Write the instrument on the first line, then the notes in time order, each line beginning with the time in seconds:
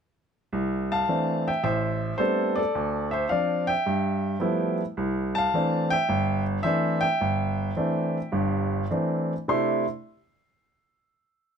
grand piano
0.53 C2
0.92 F5 A5
1.09 E3 A3 C4 D4
1.47 E5 G5
1.63 A1 C5 E5
2.18 G3 A3 B3 C4 D4 A4 C5
2.56 A4 D5
2.75 D2
3.11 C5 E5
3.29 F3 C4 D4 D5 F5
3.67 E5 G5
3.86 G2
4.40 F3 G3 A3 B3 E4
4.97 C2
5.35 F5 A5
5.54 E3 A3 C4 D4
5.90 E5 G5
6.09 G1
6.63 E3 A3 C4 D4 C5 E5
7.01 E5 G5
7.21 G1
7.76 E3 A3 C4 D4
8.32 G1 G2
8.91 E3 A3 C4 D4
9.48 C3 A3 D4 E4 C6